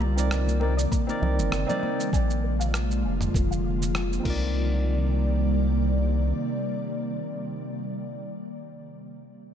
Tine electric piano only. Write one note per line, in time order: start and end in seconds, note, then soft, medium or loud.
0.16 0.57 C4 medium
0.16 0.58 D#4 medium
0.16 0.59 A#4 medium
0.16 0.59 D5 medium
0.60 0.73 C4 medium
0.60 0.74 D#4 medium
0.60 0.74 A#4 medium
0.60 0.75 D5 medium
1.07 1.64 C4 medium
1.07 1.65 D#4 medium
1.07 1.65 A#4 medium
1.07 1.66 D5 medium
1.67 2.08 C4 medium
1.67 2.09 D#4 medium
1.67 2.10 A#4 medium
1.67 2.10 D5 medium
4.20 8.29 C4 medium
4.20 8.32 D#4 medium
4.26 8.35 A#4 medium
4.26 8.39 D5 medium